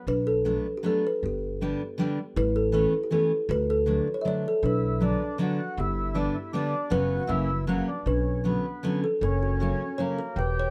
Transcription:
0.07 upright bass B1, kalimba D4 B4
0.27 kalimba A4
0.45 steel-string acoustic guitar F#3 A3 B3 D4, kalimba A4
0.77 kalimba G4
0.83 steel-string acoustic guitar F#3 A3 B3 D4, kalimba A4
1.07 kalimba B4
1.23 upright bass G1, kalimba B3 G4
1.61 steel-string acoustic guitar D3 G3 B3 D4
1.98 steel-string acoustic guitar D3 G3 B3 D4
2.36 upright bass A1, kalimba E4 B4
2.56 kalimba A4
2.72 steel-string acoustic guitar E3 A3 B3 C#4, kalimba A4
3.04 kalimba G4
3.11 steel-string acoustic guitar E3 A3 B3 C#4, kalimba A4
3.49 upright bass D2, kalimba F#4 B4
3.70 kalimba A4
3.86 steel-string acoustic guitar D3 F#3 A3 D4, kalimba B4
4.14 kalimba C#5
4.21 steel-string acoustic guitar D3 F#3 A3, kalimba E5
4.26 steel-string acoustic guitar D4, kalimba D5
4.48 kalimba A4
4.63 upright bass B1, kalimba D4 B4, accordion E4
5.00 steel-string acoustic guitar D3 F#3 B3 D4, accordion D4
5.38 steel-string acoustic guitar D3 F#3 B3 D4, accordion F#4
5.77 upright bass G1, kalimba B3 G4, accordion E4
6.14 steel-string acoustic guitar D3 G3 B3 D4, accordion D4
6.35 accordion E4
6.53 steel-string acoustic guitar D3 G3 B3 D4, accordion D4
6.90 upright bass F#1, steel-string acoustic guitar C#3 F#3 B3 C#4, accordion F#4, kalimba F#4 B4
7.27 upright bass F#1, steel-string acoustic guitar C#3 F#3 A#3 C#4, accordion E4
7.67 steel-string acoustic guitar C#3 F#3 A#3 C#4, accordion F#4
7.88 accordion D4
8.06 upright bass B1, accordion C#4, kalimba D4 B4
8.44 steel-string acoustic guitar D3 F#3 B3 C#4, accordion B3
8.83 steel-string acoustic guitar D3 F#3 B3 C#4
9.04 kalimba A4
9.21 upright bass F#1, accordion C#4, kalimba A#4
9.43 kalimba F#4
9.60 steel-string acoustic guitar C#3 F#3 A#3 C#4, kalimba F#4
9.98 steel-string acoustic guitar C#3 F#3 A#3 C#4, accordion A#3, kalimba C#5
10.19 kalimba A#4
10.36 upright bass E1, accordion G4, kalimba B4
10.60 kalimba C#5

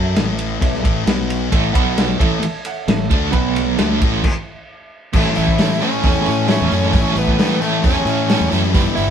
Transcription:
Already playing: fingered electric bass F#2, distorted electric guitar F#3 C#4 F#4, grand piano A4 C#5 E5 A5
0.16 fingered electric bass A1, distorted electric guitar A2 E3 A3, snare, ride
0.39 ride
0.60 fingered electric bass B1, distorted electric guitar B2 F#3 B3, grand piano A4 C#5 E5 A5, kick, ride
0.74 snare
0.82 fingered electric bass A1, distorted electric guitar A2 E3 A3, grand piano A4 C#5 E5 A5, kick, ride
1.06 fingered electric bass B1, distorted electric guitar B2 F#3 B3, grand piano F#4 B4 F#5 B5, snare, ride
1.30 ride
1.51 fingered electric bass A1, distorted electric guitar A2 E3 A3, grand piano A4 C#5 E5 A5, kick, ride
1.72 fingered electric bass B1, distorted electric guitar B2 F#3 B3, grand piano F#4 B4 F#5 B5, kick, ride
1.98 snare, ride
2.18 fingered electric bass A1, distorted electric guitar A2 E3 A3, grand piano A4 C#5 E5 A5, kick, ride
2.42 muted overdriven electric guitar stroke, muted fingered electric bass stroke, muted distorted electric guitar stroke, ride
2.65 grand piano A4 C#5 E5 F#5, ride
2.87 fingered electric bass A1, distorted electric guitar A2 E3, grand piano A4 C#5 E5 A5, snare, ride
3.11 fingered electric bass D2, distorted electric guitar D3 A3 D4, kick, ride
3.31 fingered electric bass B1, distorted electric guitar B2 F#3, grand piano F#4 B4 F#5 B5, kick, ride
3.36 distorted electric guitar B3
3.56 snare, ride
3.77 fingered electric bass D2, distorted electric guitar D3, grand piano A4 C#5 E5 A5, snare, ride
3.81 distorted electric guitar A3 D4
4.01 fingered electric bass A1, distorted electric guitar A2 E3 A3, kick, ride
4.24 kick, crash
5.13 fingered electric bass A1, distorted electric guitar A2 E3 A3 C#4 E4, grand piano E4 A4 C#5 E5, overdriven electric guitar A4, kick, crash
5.25 snare
5.35 fingered electric bass A1, lead electric guitar E4, open hi-hat
5.48 steel-string acoustic guitar A3 C#4 E4, kick
5.58 distorted electric guitar A2 E3 A3 C#4 E4, grand piano E4 A4 C#5 E5, overdriven electric guitar A4, snare, open hi-hat
5.71 snare
5.81 distorted electric guitar A2 E3 A3 C#4 E4, overdriven electric guitar A4, open hi-hat
5.91 steel-string acoustic guitar A3 E4
6.03 fingered electric bass E2, distorted electric guitar A2 E3 A3 C#4 E4, grand piano E4 A4 C#5 G5, overdriven electric guitar A4, kick, open hi-hat
6.14 steel-string acoustic guitar A3 C#4 E4
6.26 fingered electric bass A2, steel-string acoustic guitar E3 A3 C#4 E4, open hi-hat
6.48 distorted electric guitar A2 E3 A3 C#4 E4, grand piano E4 A4 C#5 E5, overdriven electric guitar A4, snare, open hi-hat
6.61 fingered electric bass E2
6.72 fingered electric bass F#2, distorted electric guitar A2 E3 A3 C#4 E4, overdriven electric guitar A4, open hi-hat
6.82 steel-string acoustic guitar A3 C#4 E4, snare
6.93 fingered electric bass A1, distorted electric guitar A2 E3 A3 C#4 E4, grand piano E4 A4 C#5 E5, overdriven electric guitar A4, kick, open hi-hat
7.05 snare
7.16 fingered electric bass A1, lead electric guitar B3, open hi-hat
7.27 steel-string acoustic guitar A3 C#4 E4, kick
7.37 distorted electric guitar A2 E3 A3 C#4 E4, grand piano E4 A4 C#5 G5, overdriven electric guitar A4, snare, open hi-hat
7.61 distorted electric guitar A2 E3 A3 C#4 E4, overdriven electric guitar A4, open hi-hat
7.72 steel-string acoustic guitar C#4 E4
7.82 fingered electric bass E2, distorted electric guitar A2 E3 A3 C#4 E4, grand piano E4 A4 C#5 G5, overdriven electric guitar A4, kick, open hi-hat
7.95 steel-string acoustic guitar A3 C#4 E4
8.05 fingered electric bass A2, steel-string acoustic guitar E3 A3 C#4 E4, open hi-hat
8.19 steel-string acoustic guitar A3
8.27 distorted electric guitar A2 E3 A3 C#4 E4, grand piano E4 A4 C#5 G5, overdriven electric guitar A4, snare, open hi-hat
8.41 fingered electric bass E2
8.52 fingered electric bass F#2, distorted electric guitar A2 E3 A3 C#4 E4, overdriven electric guitar A4, open hi-hat
8.63 steel-string acoustic guitar A3 C#4 E4, snare
8.73 fingered electric bass G1, distorted electric guitar G2 D3 G3 B3 D4, steel-string acoustic guitar E3 E4, grand piano E4 G4 B4 D5, overdriven electric guitar B4, kick, open hi-hat
8.95 fingered electric bass G1, lead electric guitar E4, open hi-hat

